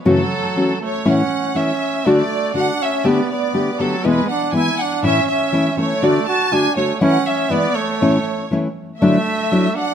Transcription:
X:1
M:2/4
L:1/8
Q:1/4=121
K:F#m
V:1 name="Violin section"
A3 c | [K:A] f2 e2 | d2 f e | d d2 A |
B f g f | e e2 c | d a g c | f e d c- |
c2 z2 | [K:D] e3 f |]
V:2 name="Trumpet"
F,3 A, | [K:A] C2 C2 | A,2 D C | B, B,2 F, |
G, D E D | C C2 A, | A, F D A, | C C B, A,- |
A,2 z2 | [K:D] A,3 D |]
V:3 name="Nylon-string guitar"
[F,,C,E,A,CF] z [E,A,CF] z | [K:A] [A,,E,A,CE] z [E,A,CE] z | [D,A,DF] z [D,A,DF] z | [D,A,B,=G] z [D,A,B,G] [D,A,B,G] |
[E,,B,,E,G,B,E] z [E,G,B,E] z | [A,,E,A,CE] z [E,A,CE] [E,A,CE] | [D,A,DF] z [D,A,DF] [D,A,DF] | [E,A,CE] z [E,G,B,E] z |
[A,,E,A,CE] z [E,A,CE] z | [K:D] [D,F,A,DE] z [F,A,DE] z |]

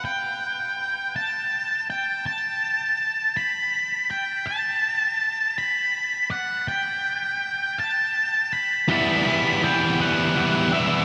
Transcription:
X:1
M:6/8
L:1/8
Q:3/8=54
K:Em
V:1 name="Lead electric guitar"
g3 a2 g | a3 b2 g | a3 b2 f | g3 a2 b |
b2 g f2 e |]
V:2 name="Distorted electric guitar"
z6 | z6 | z6 | z6 |
[E,G,B,E] [G,B,E] [E,G,B,E] [G,B,E] [E,G,B,E] [G,B,E] |]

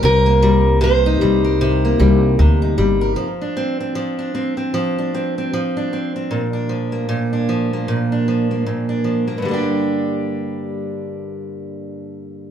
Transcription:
X:1
M:4/4
L:1/16
Q:"Swing 16ths" 1/4=76
K:Gm
V:1 name="Steel-string acoustic guitar"
B4 c8 z4 | z16 | z16 | z16 |]
V:2 name="Steel-string acoustic guitar"
[C,B] B, G,2 C, E G, B C, B, G,2 C, E G, B | F, D C C F, D C C F, D C C F, D C C | B,, D F, B, B,, D F, B, B,, D F, B, B,, D F, B, | [G,,D,G,B,DG]16 |]
V:3 name="Upright bass" clef=bass
C,,6 C,,4 C,,2 D,,2 G,,,2 | z16 | z16 | z16 |]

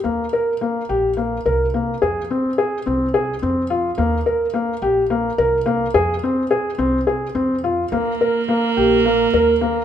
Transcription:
X:1
M:7/8
L:1/8
Q:1/4=106
K:Ebmix
V:1 name="Felt piano"
B, B B, G B, B B, | A C A C A C F | B, B B, G B, B B, | A C A C A C F |
B, B B, G B, B B, |]
V:2 name="Viola"
z6 z | z6 z | z6 z | z6 z |
B,6- B, |]
V:3 name="Upright bass" clef=bass
E,, z2 B,,,2 C,,2 | F,, z2 C,,2 F,,2 | E,, z2 B,,,2 C,,2 | F,, z2 C,,2 F,,2 |
E,, z2 B,,,2 E,,2 |]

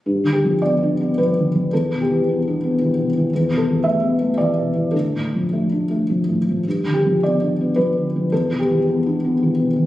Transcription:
X:1
M:3/4
L:1/8
Q:1/4=110
K:Gmix
V:1 name="Felt piano"
z G d2 B2 | A G4 z | z A e2 d2 | A4- A z |
z G d2 B2 | A G4 z |]
V:2 name="Felt piano" clef=bass
(3G,, D, F, (3B, D B, (3F, D, F, | (3E,, B,, E, (3B, D B, (3E, B,, E, | (3E,, B,, E, (3A, B, A, (3E, B,, E, | (3D,, A,, F, (3A, D A, (3F, A,, F, |
(3G,, D, F, (3B, D B, (3F, D, F, | (3E,, B,, E, (3B, D B, (3E, B,, E, |]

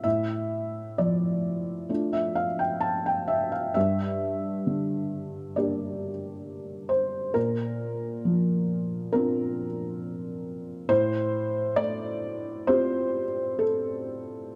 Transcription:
X:1
M:4/4
L:1/16
Q:1/4=67
K:Dm
V:1 name="Felt piano"
e4 d4- d e f g a g e f | e8 d6 c2 | B8 B8 | c4 d4 c4 A4 |]
V:2 name="Felt piano"
A,,4 F,4 [A,DF]8 | G,,4 D,4 [B,DG]8 | B,,4 F,4 [CDF]8 | A,,4 A,4 [CFG]8 |]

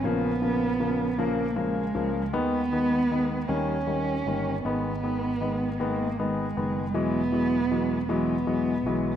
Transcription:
X:1
M:6/8
L:1/8
Q:3/8=52
K:G#m
V:1 name="Cello"
B,3 A, G,2 | B,3 C3 | B,3 A, G,2 | B,3 B,3 |]
V:2 name="Grand piano" clef=bass
[C,^E,A,] [C,E,A,] [C,E,A,] [C,E,A,] [C,E,A,] [C,E,A,] | [D,G,B,] [D,G,B,] [D,G,B,] [D,=G,A,] [D,G,A,] [D,G,A,] | [D,G,B,] [D,G,B,] [D,G,B,] [D,G,B,] [D,G,B,] [D,G,B,] | [E,F,G,] [E,F,G,] [E,F,G,] [E,F,G,] [E,F,G,] [E,F,G,] |]
V:3 name="Fretless electric bass" clef=bass
A,,,4- A,,, C,, | D,,3 D,,2 =G,,, | G,,,4- G,,, F,,, | E,,,4- E,,, B,,, |]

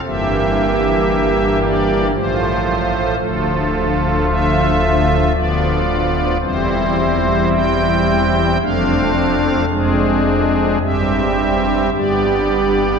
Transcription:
X:1
M:3/4
L:1/8
Q:1/4=56
K:C
V:1 name="Pipe organ"
e3 d c2 | A2 e2 d2 | c2 g2 f2 | _A2 e2 d2 |]
V:2 name="Pipe organ" clef=bass
[G,,,G,,E,_B,G]4 [A,,,A,,F,A,F]2 | [D,,,D,,F,A,F]4 [D,,,D,,F,B,F]2 | [E,,,E,,G,CE]4 [F,,,F,,A,CD]2 | [F,,,F,,_A,CD]2 [G,,,G,,G,CG]2 [G,,,G,,G,B,G]2 |]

